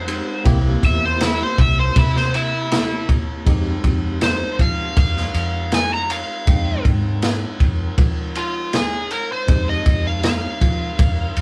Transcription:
Already playing: F2 C5
0.07 G#3 C4 D#4 G4, ride
0.44 C2 A#3 C4 E4 G4, kick, ride
0.81 E2 A#3 C4 E4, kick, ride
0.86 E5
1.05 C5
1.21 E4, snare, ride
1.43 C5
1.58 C2 E5, kick, ride
1.79 C5
1.96 C3 E4, kick, ride
2.16 C5, snare
2.34 E4, ride
2.71 A#3 C4 E4 G4, snare, ride
3.09 kick, ride
3.46 F2 G#3 C4 D#4 G4, kick, ride
3.84 F2, kick, ride
4.21 C5, snare, ride
4.59 F3 F5, kick, ride
4.97 F2 F5, kick, ride
5.17 snare
5.34 F2, ride
5.72 G#5, snare, ride
5.94 A#5
6.10 F5, ride
6.46 F2 G#3 C4 D#4 G5, kick, ride
6.85 G#2, kick, ride
7.22 snare, ride
7.60 F2, kick, ride
7.98 F3, kick, ride
8.35 F4, ride
8.73 G#4, snare, ride
9.11 A#4, ride
9.32 C5
9.47 F2 G#3 C4 D#4 G4, kick, ride
9.69 D#5
9.86 F2, kick, ride
10.07 F5
10.23 F5, snare, ride
10.61 F3, kick, ride
10.99 F2, kick, ride
11.37 F2, ride

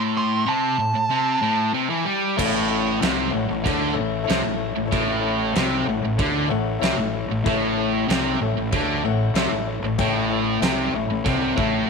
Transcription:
Already playing: A2
0.17 C6
0.46 C3 A5
0.78 A2
0.94 A2
1.10 C3
1.42 A2
1.73 C3
1.89 E3
2.05 G3
2.37 A1 A2 E4 A4 C#5 E5, kick, crash
2.70 E4 A4 C#5 E5
2.99 C2 C3 E4 A4 C#5 F#5, crash
3.03 snare
3.30 A1 A2 E4 A4 C#5 F#5
3.50 A1 A2
3.62 D2 D3 E4 A4 C#5 F#5, kick
3.67 D3, crash
3.93 A2 E4 A4 C#5 E5
3.98 A1 A2
4.24 E4 A4 C#5 E5
4.29 C2 C3, snare, crash
4.45 A1 A2
4.56 E4 A4 C#5 E5
4.77 A1 A2
4.86 E4 A4 C#5 E5
4.92 A1 A2, kick, crash
5.20 E4 A4 C#5 E5
5.52 C2 E4 A4 C#5 G5, crash
5.56 C3, snare
5.83 A1 E4 A4 C#5 F#5
5.89 A2
6.04 A1 A2
6.16 D2 E4 A4 C#5 E5, kick, crash
6.21 D3
6.48 A1 A2 E4 A4 C#5 F#5
6.79 C2 C3 E4 A4 C#5 E5, crash
6.84 snare
6.96 A1 A2
7.14 E4 A4 C#5 E5
7.29 A1 A2
7.44 A1 A2 E4 A4 C#5 E5, kick, crash
7.77 E4 A4 C#5 E5
8.08 C2 C3 E4 A4 C#5 G5, snare, crash
8.40 A1 A2 E4 A4 C#5 E5
8.56 A1 A2
8.72 D2 D3 E4 A4 C#5 E5, kick, crash
9.03 A1 A2 E4 A4 C#5 F#5
9.34 C2 C3 E4 A4 C#5 E5, snare, crash
9.51 A1 A2
9.66 E4 A4 C#5 E5
9.82 A1 A2
9.98 A1 A2 E4 A4 C#5 G5, kick, crash
10.30 E4 A4 C#5 E5
10.60 C2 C3 E4 A4 C#5 E5, snare, crash
10.92 A1 E4 A4 C#5 E5 C#6
10.96 A2
11.08 A1 A2 B5
11.23 C2 E4 A4 C#5 F#5 A5, kick, crash
11.27 C3
11.55 A1 A2 E4 A4 C#5 E5 F#5, kick

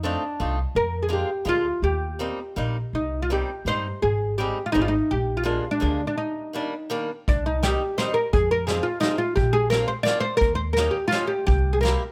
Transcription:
Already playing: F2
0.03 A3 C4 D4 D#4 F4
0.40 C2 A3 C4 D#4 F4
0.75 F2 A#4
1.03 G#4
1.09 G#3 A#3 D4 F4
1.13 G4
1.45 D2 G#3 A#3 D4 F4
1.82 D#2 G4
2.19 G3 A#3 C4 D#4
2.56 A#1 G3 A#3 C4 D#4
2.93 C2 D#4
3.22 F4
3.30 G3 A#3 C4 D#4 G4
3.65 G2 G3 A#3 C4 D#4 C5
4.02 G#1 G#4
4.38 G3 G#3 C4 D#4 G4
4.66 F4
4.72 G#1 G3 G#3 C4 D#4
4.82 F4
4.88 D#4
5.11 A#1 G4
5.37 F4
5.43 F3 G#3 A#3 D4 F4
5.71 D4
5.80 D2 F3 G#3 A#3 D4
6.07 D4
6.18 D#4
6.53 D#3 G3 A#3 D4
6.90 D#3 G3 A#3 D4
7.28 C2 D4, kick, closed hi-hat
7.46 D#4
7.63 D#3 G3 C4 D#4 G4, snare, closed hi-hat
7.98 D#3 G3 C4 D#4 C5, snare, closed hi-hat
8.14 A#4
8.33 F2 G#4, kick, closed hi-hat
8.51 A#4
8.67 F3 G#3 C4 F4 G#4, snare, closed hi-hat
8.83 F4
9.00 F3 G#3 C4 D#4 F4, snare, closed hi-hat
9.18 F4
9.36 A#1 G4, kick, closed hi-hat
9.53 G#4
9.70 A#3 C4 D4 F4 A#4, snare, closed hi-hat
9.88 C5
10.03 A#3 C4 D4 D5, snare, closed hi-hat
10.08 F4
10.20 C5
10.37 A#4
10.41 D#2, kick, closed hi-hat
10.55 C5
10.73 A#4, snare, closed hi-hat
10.77 A#3 C#4 D#4 G4
10.91 G4
11.08 A#3 F4
11.12 C#4 D#4 G4, snare, closed hi-hat
11.27 G4
11.47 C2 G4, kick, closed hi-hat
11.73 G#4
11.81 A#3 C4 E4 G4 A#4
11.85 snare, closed hi-hat

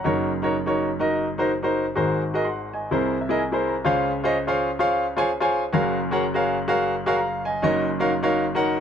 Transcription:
Already playing: F#5
0.04 F#1 F#2 D#4 F#4 A#4 C#5
0.42 D#4 F#4 A#4 C#5
0.66 D#4 F#4 A#4 C#5
0.99 D#4 F#4 A#4 D#5
1.38 D#4 F#4 A#4 C5
1.63 D#4 F#4 A#4 C5
1.95 G#1 G#2 F#4 G#4 A#4 C5
2.34 F#4 G#4 A#4 D#5
2.44 F#5 C6
2.73 D#5 G#5
2.91 C2 C3 E4 G#4 A#4 C5
3.21 E5
3.29 E4 G#4 A#4 D#5
3.39 G#5
3.52 E4 G#4 A#4 C5
3.67 A#5
3.85 C#2 C#3 F4 G#4 C5 C#5 F5
4.24 F4 G#4 C5 C#5 D#5
4.47 F4 G#4 C5 C#5 F5
4.79 F4 G#4 C5 C#5 F5
5.17 F4 G#4 C5 C#5 G#5
5.40 F4 G#4 C5 C#5 G#5
5.73 F#1 F#2 F#4 G#4 A#4 C#5 F5
6.11 F#4 G#4 A#4 C#5 F#5
6.34 F#4 G#4 A#4 C#5 F5
6.68 F#4 G#4 A#4 C#5 F5
7.06 F#4 G#4 A#4 C#5 F5
7.16 F5 A#5
7.45 D#5 G#5
7.62 F#1 F#2 D#4 F#4 A#4 C#5 D#5
8.00 D#4 F#4 A#4 C#5 F5
8.23 D#4 F#4 A#4 C#5 F5
8.55 D#4 F#4 A#4 C#5 F#5

